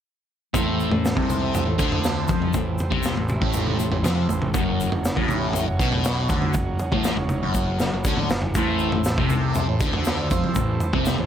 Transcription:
0.54 0.89 A1 loud
0.54 0.90 A2 loud
0.54 4.50 E3 medium
0.54 4.50 A3 medium
0.54 4.50 C4 medium
0.54 2.52 A4 medium
0.54 4.50 C5 medium
0.54 kick loud
0.54 floor tom medium
0.54 shaker medium
0.80 shaker medium
0.91 1.15 A1 medium
0.91 1.12 A2 medium
0.91 floor tom medium
1.05 snare medium
1.05 shaker medium
1.16 1.63 C2 medium
1.16 1.65 C3 loud
1.16 kick loud
1.16 floor tom medium
1.30 mid tom medium
1.30 shaker medium
1.54 floor tom medium
1.54 shaker medium
1.66 1.78 A1 medium
1.66 1.78 A2 medium
1.78 2.26 D2 loud
1.78 2.28 D3 loud
1.78 kick loud
1.78 shaker medium
1.92 floor tom medium
2.04 snare medium
2.04 shaker medium
2.28 2.52 F2 medium
2.28 2.53 F3 loud
2.28 kick loud
2.28 floor tom medium
2.28 shaker medium
2.42 floor tom medium
2.53 2.77 A1 medium
2.53 2.74 A2 medium
2.53 4.52 G4 medium
2.53 kick medium
2.53 floor tom medium
2.53 shaker medium
2.78 floor tom medium
2.78 shaker medium
2.91 3.15 C2 medium
2.91 3.15 C3 loud
2.91 kick loud
2.91 floor tom medium
3.03 snare medium
3.03 shaker loud
3.15 3.39 A1 medium
3.15 3.36 A2 medium
3.15 floor tom medium
3.28 mid tom medium
3.28 shaker medium
3.41 3.76 A1 loud
3.41 3.77 A2 loud
3.41 kick loud
3.53 floor tom medium
3.53 shaker medium
3.67 mid tom medium
3.79 3.90 A1 medium
3.79 3.91 A2 medium
3.79 shaker medium
3.91 4.02 A1 medium
3.91 4.04 A2 medium
3.91 floor tom medium
4.03 4.27 F2 medium
4.03 4.28 F3 loud
4.03 snare medium
4.03 floor tom medium
4.03 mid tom medium
4.03 shaker medium
4.29 4.52 A1 medium
4.29 4.49 A2 medium
4.29 floor tom medium
4.29 shaker medium
4.42 mid tom medium
4.54 4.89 F#1 loud
4.54 4.90 F#2 loud
4.54 8.51 F#3 medium
4.54 8.51 C#4 medium
4.54 8.51 F#4 medium
4.54 kick loud
4.54 floor tom medium
4.54 shaker medium
4.80 shaker medium
4.91 5.15 F#1 medium
4.91 5.12 F#2 medium
4.91 floor tom medium
5.04 snare medium
5.04 shaker loud
5.16 5.63 A1 medium
5.16 5.66 A2 loud
5.16 kick medium
5.16 floor tom medium
5.29 mid tom medium
5.29 shaker medium
5.53 floor tom medium
5.53 shaker medium
5.67 5.78 F#1 medium
5.67 5.79 F#2 medium
5.79 6.26 B1 loud
5.79 6.29 B2 loud
5.79 kick loud
5.79 shaker medium
5.92 floor tom medium
6.04 snare medium
6.04 shaker medium
6.29 6.53 D2 loud
6.29 6.54 D3 loud
6.29 kick loud
6.29 floor tom medium
6.29 shaker medium
6.42 floor tom medium
6.54 6.78 F#1 medium
6.54 6.75 F#2 medium
6.54 kick medium
6.54 floor tom medium
6.54 shaker medium
6.79 floor tom medium
6.79 shaker medium
6.92 7.15 A1 loud
6.92 7.16 A2 medium
6.92 kick loud
6.92 floor tom medium
7.04 snare medium
7.04 shaker medium
7.17 7.40 F#1 medium
7.17 7.37 F#2 medium
7.17 floor tom medium
7.29 mid tom medium
7.29 shaker medium
7.43 7.77 F#1 loud
7.43 7.79 F#2 loud
7.54 kick medium
7.54 shaker medium
7.79 7.91 F#1 medium
7.79 7.92 F#2 medium
7.79 snare medium
7.79 shaker medium
7.92 8.04 F#1 medium
7.92 8.05 F#2 medium
8.04 8.28 D2 medium
8.04 8.29 D3 loud
8.04 kick medium
8.04 shaker medium
8.17 mid tom medium
8.30 8.53 F#1 medium
8.30 8.50 F#2 medium
8.30 snare loud
8.30 shaker medium
8.42 floor tom medium
8.54 8.90 A1 loud
8.54 8.92 A2 loud
8.54 11.26 E3 medium
8.54 11.26 A3 medium
8.54 11.26 C4 medium
8.54 11.26 A4 medium
8.54 11.26 C5 medium
8.54 kick loud
8.54 floor tom medium
8.54 shaker medium
8.79 shaker medium
8.92 9.16 A1 medium
8.92 9.13 A2 medium
8.92 floor tom medium
9.04 snare medium
9.04 shaker medium
9.17 9.64 C2 medium
9.17 9.67 C3 loud
9.17 kick loud
9.17 floor tom medium
9.30 mid tom medium
9.30 shaker medium
9.54 floor tom medium
9.54 shaker medium
9.68 9.80 A1 medium
9.68 9.80 A2 medium
9.80 10.27 D2 medium
9.80 10.30 D3 loud
9.80 kick loud
9.80 shaker medium
9.93 floor tom medium
10.05 snare medium
10.05 shaker medium
10.30 10.54 F2 loud
10.30 10.55 F3 loud
10.30 kick loud
10.30 floor tom medium
10.30 shaker medium
10.44 floor tom medium
10.55 10.79 A1 medium
10.55 10.76 A2 medium
10.55 kick loud
10.55 floor tom medium
10.55 shaker medium
10.80 floor tom medium
10.80 shaker medium
10.93 11.17 C2 loud
10.93 11.18 C3 loud
10.93 kick loud
10.93 floor tom medium
11.05 snare medium
11.05 shaker medium
11.18 11.26 A1 medium
11.18 11.26 A2 medium
11.18 floor tom medium

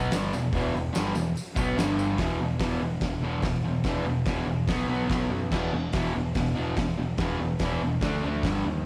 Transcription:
0.00 0.11 B2 loud
0.00 0.11 F#3 loud
0.00 0.12 B3 loud
0.11 0.31 G1 loud
0.11 0.32 G2 medium
0.11 0.32 D3 loud
0.11 0.33 G3 loud
0.11 snare loud
0.11 open hi-hat medium
0.11 tambourine medium
0.33 0.53 E1 medium
0.33 0.49 E2 medium
0.33 0.49 B2 medium
0.33 tambourine medium
0.53 0.72 E1 loud
0.53 0.73 E2 medium
0.53 0.73 B2 loud
0.53 0.74 E3 loud
0.53 kick loud
0.53 open hi-hat medium
0.53 tambourine soft
0.75 0.93 E1 medium
0.75 0.91 E2 medium
0.75 0.91 B2 medium
0.75 tambourine soft
0.93 1.14 G1 loud
0.93 1.13 G2 medium
0.93 1.13 D3 loud
0.93 1.14 G3 loud
0.93 snare loud
0.93 open hi-hat medium
0.93 tambourine loud
1.15 1.34 E1 medium
1.15 1.31 E2 medium
1.15 1.32 B2 medium
1.15 tambourine medium
1.35 open hi-hat medium
1.35 tambourine medium
1.56 1.75 B1 medium
1.56 1.79 B2 loud
1.56 1.80 F#3 medium
1.56 1.78 B3 loud
1.56 kick loud
1.56 tambourine medium
1.77 2.16 G1 medium
1.77 2.18 G2 loud
1.77 2.19 D3 loud
1.77 2.19 G3 medium
1.77 snare loud
1.77 open hi-hat medium
1.77 tambourine medium
1.99 tambourine medium
2.18 2.37 E1 medium
2.18 2.38 E2 medium
2.18 2.38 B2 medium
2.18 2.39 E3 medium
2.18 kick loud
2.18 snare loud
2.18 open hi-hat medium
2.39 2.58 E1 medium
2.39 2.59 E2 medium
2.39 2.59 B2 medium
2.59 2.78 E1 loud
2.59 2.79 E2 medium
2.59 2.80 B2 medium
2.59 2.80 E3 medium
2.59 kick loud
2.59 snare loud
2.59 open hi-hat medium
2.81 3.00 E1 medium
2.81 3.00 E2 medium
2.81 3.00 B2 medium
3.00 3.20 E1 medium
3.00 3.21 E2 medium
3.00 3.21 B2 medium
3.00 kick loud
3.00 snare loud
3.00 open hi-hat medium
3.21 3.40 E1 medium
3.21 3.42 E2 loud
3.21 3.42 B2 loud
3.21 3.43 E3 loud
3.42 3.62 E1 medium
3.42 3.62 E2 medium
3.42 3.62 B2 medium
3.42 kick loud
3.42 snare loud
3.42 open hi-hat medium
3.64 3.83 E1 medium
3.64 3.83 E2 medium
3.64 3.83 B2 medium
3.84 4.02 E1 medium
3.84 4.04 E2 loud
3.84 4.05 B2 medium
3.84 4.05 E3 loud
3.84 kick loud
3.84 snare loud
3.84 open hi-hat medium
4.03 4.23 E1 medium
4.03 4.24 E2 medium
4.03 4.24 B2 medium
4.25 4.45 E1 loud
4.25 4.46 E2 medium
4.25 4.46 B2 medium
4.25 4.46 E3 medium
4.25 kick loud
4.25 snare loud
4.25 open hi-hat medium
4.45 4.65 E1 medium
4.45 4.67 E2 medium
4.45 4.67 B2 medium
4.68 4.87 B1 loud
4.68 4.86 B2 loud
4.68 4.87 F#3 loud
4.68 4.88 B3 loud
4.68 kick loud
4.68 snare loud
4.68 open hi-hat medium
4.88 5.07 B1 medium
4.88 5.07 B2 loud
4.88 5.08 F#3 loud
4.88 5.08 B3 loud
5.08 5.29 B1 medium
5.08 5.29 B2 medium
5.08 5.29 F#3 loud
5.08 5.29 B3 loud
5.08 kick loud
5.08 snare loud
5.08 open hi-hat medium
5.30 5.50 F#2 loud
5.30 5.49 B2 medium
5.30 5.49 F#3 medium
5.51 5.70 E1 loud
5.51 5.71 E2 medium
5.51 5.71 B2 medium
5.51 5.72 E3 medium
5.51 kick loud
5.51 snare loud
5.51 crash medium
5.73 5.92 E1 medium
5.73 5.92 E2 medium
5.73 5.92 B2 medium
5.92 6.13 E1 medium
5.92 6.13 E2 medium
5.92 6.13 B2 medium
5.92 6.14 E3 medium
5.92 kick loud
5.92 snare loud
5.92 open hi-hat medium
6.14 6.34 E1 medium
6.14 6.33 E2 medium
6.14 6.33 B2 medium
6.34 6.54 E1 loud
6.34 6.53 E2 medium
6.34 6.54 B2 medium
6.34 kick loud
6.34 snare loud
6.34 open hi-hat medium
6.54 6.75 E2 loud
6.54 6.75 B2 loud
6.54 6.75 E3 loud
6.59 6.76 E1 medium
6.76 6.96 E1 medium
6.76 6.96 E2 medium
6.76 6.96 B2 medium
6.76 kick loud
6.76 snare loud
6.76 open hi-hat medium
6.97 7.17 E1 medium
6.97 7.16 E2 medium
6.97 7.17 B2 medium
7.17 7.37 E1 loud
7.17 7.38 E2 medium
7.17 7.38 B2 medium
7.17 7.39 E3 medium
7.17 kick loud
7.17 snare loud
7.17 open hi-hat medium
7.40 7.58 E1 medium
7.40 7.59 E2 medium
7.40 7.59 B2 medium
7.59 7.79 E1 loud
7.59 7.80 E2 medium
7.59 7.81 B2 medium
7.59 kick loud
7.59 snare loud
7.59 open hi-hat medium
7.63 7.81 E3 loud
7.81 8.00 E1 medium
7.81 8.01 E2 medium
7.81 8.01 B2 medium
8.01 8.20 D2 medium
8.01 8.22 D3 medium
8.01 8.22 A3 loud
8.01 8.23 D4 loud
8.01 kick loud
8.01 snare loud
8.01 open hi-hat medium
8.24 8.42 D2 medium
8.24 8.43 D3 loud
8.24 8.44 A3 medium
8.24 8.44 D4 loud
8.43 8.62 G1 medium
8.43 8.63 G2 medium
8.43 8.64 D3 medium
8.43 8.64 G3 medium
8.43 kick loud
8.43 snare loud
8.43 open hi-hat medium
8.65 8.84 D#2 medium
8.65 8.84 G2 medium
8.65 8.84 D3 medium

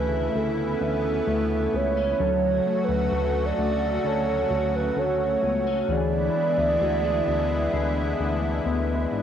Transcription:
0.00 0.29 D2 medium
0.00 2.16 C#3 medium
0.00 2.16 E3 medium
0.00 2.19 E3 medium
0.00 0.31 A3 medium
0.00 1.27 A3 soft
0.00 0.81 C#4 medium
0.00 2.16 E4 medium
0.00 0.35 G#4 medium
0.00 0.36 B4 medium
0.35 0.76 D2 medium
0.35 2.18 B3 medium
0.35 1.77 A4 medium
0.81 1.22 D2 loud
0.81 1.73 C#4 medium
1.27 1.68 D2 medium
1.27 2.66 A3 medium
1.73 2.14 C#2 medium
1.73 1.97 B3 soft
1.73 2.86 C#5 loud
1.97 2.29 C#4 soft
2.19 2.60 D2 medium
2.19 5.86 C#3 medium
2.19 5.88 F#3 medium
2.19 5.85 F#3 medium
2.19 5.85 A3 medium
2.19 5.86 F#4 medium
2.19 3.12 A4 medium
2.67 3.58 A3 soft
2.84 3.47 B4 medium
2.89 3.09 D2 loud
3.12 3.52 D2 loud
3.12 4.04 A4 medium
3.45 4.08 D5 medium
3.58 3.99 D2 loud
3.58 4.96 A3 soft
4.04 4.45 D2 medium
4.04 5.89 A4 medium
4.04 4.74 C#5 medium
4.50 4.91 D2 medium
4.50 5.43 C#4 medium
4.76 5.00 B4 medium
4.96 5.37 D2 medium
4.96 5.98 A3 medium
4.96 5.93 C#5 medium
5.43 5.83 C#2 medium
5.43 5.67 B3 medium
5.67 5.98 C#4 soft
5.89 6.29 D2 loud
5.89 9.22 D3 medium
5.89 9.22 E3 medium
5.89 9.22 G#3 medium
5.89 9.22 B3 medium
5.89 9.22 E4 medium
5.89 6.82 G#4 medium
5.89 8.67 D5 medium
6.36 7.26 B3 soft
6.58 6.78 D2 loud
6.81 7.22 D2 loud
6.81 7.05 F#4 medium
7.05 7.72 G#4 soft
7.27 7.68 D2 medium
7.27 8.65 B3 soft
7.73 8.14 D2 medium
7.73 9.22 G#4 medium
8.19 8.60 D2 medium
8.19 9.11 D4 medium
8.65 9.06 D2 loud
8.65 9.22 B3 medium
9.12 9.22 G#1 medium
9.12 9.22 D4 medium

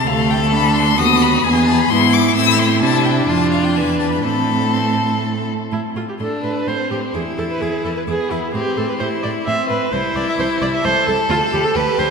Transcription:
0.07 1.00 D2 medium
0.07 0.54 A3 medium
0.07 1.00 A4 medium
0.07 0.32 F5 loud
0.30 0.41 G5 medium
0.43 0.47 A5 medium
0.53 0.98 D4 medium
0.53 0.75 B5 loud
0.76 1.00 C6 loud
0.98 1.44 D#2 medium
0.98 1.43 B3 medium
0.98 1.44 F#4 medium
0.98 1.24 D#6 loud
1.22 1.45 B5 loud
1.44 1.89 E2 medium
1.44 1.89 B3 medium
1.44 1.93 G#4 medium
1.44 1.67 G#5 loud
1.68 1.80 A5 loud
1.79 1.92 B5 loud
1.90 2.35 G#2 medium
1.90 2.35 B3 medium
1.90 2.36 E4 medium
1.90 2.15 C6 loud
2.13 2.35 D6 loud
2.36 2.83 A2 medium
2.36 2.83 C4 medium
2.36 2.81 E4 medium
2.36 2.61 E6 loud
2.59 2.81 C6 loud
2.82 3.27 C3 medium
2.82 4.25 D4 medium
2.82 3.30 E4 medium
2.82 3.06 A5 loud
3.05 3.27 G5 medium
3.28 3.76 F2 medium
3.28 3.78 F4 medium
3.28 3.51 A5 loud
3.51 3.66 F5 medium
3.64 3.77 G5 medium
3.75 4.23 E2 medium
3.75 4.24 B4 medium
3.75 3.99 G#5 medium
4.00 4.11 A5 medium
4.11 4.23 B5 medium
4.23 5.49 A2 medium
4.23 5.51 C4 medium
4.23 5.49 A4 medium
4.23 4.74 B5 medium
4.73 5.22 C6 medium
5.71 5.80 A2 soft
5.71 5.80 E4 medium
5.71 5.79 C6 soft
5.96 6.04 A2 soft
5.96 6.01 F4 soft
5.96 6.04 C6 soft
6.08 6.13 G4 soft
6.20 6.28 A2 soft
6.20 6.69 D4 soft
6.20 6.43 A4 medium
6.20 6.28 C6 soft
6.43 6.52 A2 soft
6.43 6.69 B4 medium
6.43 6.52 C6 soft
6.67 6.75 A2 soft
6.67 7.16 C4 soft
6.67 6.90 C5 medium
6.67 6.76 C6 soft
6.91 6.99 A2 soft
6.91 6.99 G4 medium
6.91 6.99 C6 soft
7.14 7.22 E2 soft
7.14 8.07 E4 medium
7.14 7.23 G#4 soft
7.14 7.22 D6 soft
7.38 7.46 E2 soft
7.38 7.42 A4 medium
7.38 7.46 D6 soft
7.50 7.62 B4 medium
7.61 7.69 E2 soft
7.61 7.84 G#4 medium
7.61 7.70 D6 soft
7.84 7.93 E2 soft
7.84 7.89 A4 medium
7.84 7.93 D6 soft
7.96 8.01 B4 medium
8.07 8.15 E2 soft
8.07 8.53 B3 soft
8.07 8.32 G#4 medium
8.07 8.15 D6 soft
8.30 8.39 E2 soft
8.30 8.53 E4 medium
8.30 8.38 D6 soft
8.53 8.62 A2 medium
8.53 9.01 C4 medium
8.53 8.78 G4 medium
8.53 8.62 C6 soft
8.77 8.85 A2 soft
8.77 8.88 A4 medium
8.77 8.86 C6 soft
8.89 8.93 B4 medium
8.99 9.08 A2 soft
8.99 9.49 E4 medium
8.99 9.07 C5 medium
8.99 9.08 C6 soft
9.23 9.32 A2 soft
9.23 9.31 D5 medium
9.23 9.32 C6 soft
9.46 9.55 A2 medium
9.46 9.91 C4 medium
9.46 9.68 E5 medium
9.46 9.56 C6 soft
9.69 9.78 A2 medium
9.69 9.94 B4 medium
9.69 9.77 C6 soft
9.92 10.01 C2 medium
9.92 10.82 E4 medium
9.92 10.17 C5 medium
9.92 10.00 A5 soft
10.16 10.24 C2 medium
10.16 10.27 D5 medium
10.16 10.24 A5 soft
10.28 10.33 E5 medium
10.39 10.47 C2 medium
10.39 10.47 C5 medium
10.39 10.47 A5 medium
10.61 10.70 C2 medium
10.61 10.66 D5 medium
10.61 10.70 A5 soft
10.74 10.86 E5 medium
10.84 10.93 C2 medium
10.84 11.76 A4 medium
10.84 11.07 C5 medium
10.84 10.93 A5 medium
11.08 11.16 C2 medium
11.08 11.16 A4 medium
11.08 11.16 A5 medium
11.29 11.38 D2 medium
11.29 11.37 F4 medium
11.29 11.39 B5 medium
11.53 11.61 D2 medium
11.53 11.66 G4 medium
11.53 11.62 B5 medium
11.64 11.77 A4 medium
11.75 11.84 D2 medium
11.75 12.10 G4 medium
11.75 12.00 B4 medium
11.75 11.84 B5 medium
11.98 12.07 D2 medium
11.98 12.10 C5 medium
11.98 12.07 B5 medium

